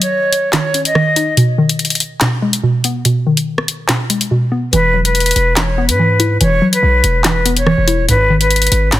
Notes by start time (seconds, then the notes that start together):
Already playing: D#3 F#3 C#4 D#4
0.01 C#5, closed hi-hat
0.33 closed hi-hat
0.53 D#3 C#5, snare, clap, closed hi-hat
0.74 C#4, closed hi-hat
0.85 D#5, closed hi-hat
0.95 D#3, cross-stick
1.16 D#4, closed hi-hat
1.37 B2, closed hi-hat
1.58 D#3
1.69 closed hi-hat
1.79 closed hi-hat
1.85 closed hi-hat
1.90 closed hi-hat
1.95 closed hi-hat
2.00 closed hi-hat
2.21 B2, snare, clap, closed hi-hat
2.42 G#3
2.53 closed hi-hat
2.63 B2
2.84 B3, closed hi-hat
3.05 B2, closed hi-hat
3.27 D#3
3.37 closed hi-hat
3.58 cross-stick
3.68 closed hi-hat
3.89 B2, snare, clap, closed hi-hat
4.10 G#3, closed hi-hat
4.21 closed hi-hat
4.31 B2
4.52 B3
4.73 E1 E3 B4, closed hi-hat
4.94 F#3
5.05 B4, closed hi-hat
5.15 closed hi-hat
5.20 closed hi-hat
5.26 closed hi-hat
5.31 closed hi-hat
5.36 E1, closed hi-hat
5.57 E3 C#5, snare, clap, closed hi-hat
5.78 B3
5.89 G#2 B4, closed hi-hat
5.99 E3
6.20 E4, closed hi-hat
6.41 E1 E3 C#5, closed hi-hat
6.62 F#3
6.73 B4, closed hi-hat
6.83 B1
7.04 E1, closed hi-hat
7.24 E3 B4, snare, clap, closed hi-hat
7.46 B3, closed hi-hat
7.57 C#5, closed hi-hat
7.66 E3, cross-stick
7.78 E1
7.87 E4, closed hi-hat
7.99 D#1
8.08 G#1 G#2 B4, closed hi-hat
8.30 D#3
8.41 B4, closed hi-hat
8.51 closed hi-hat
8.56 closed hi-hat
8.62 closed hi-hat
8.67 closed hi-hat
8.72 G#1, closed hi-hat
8.92 G#2 C#5, snare, clap, closed hi-hat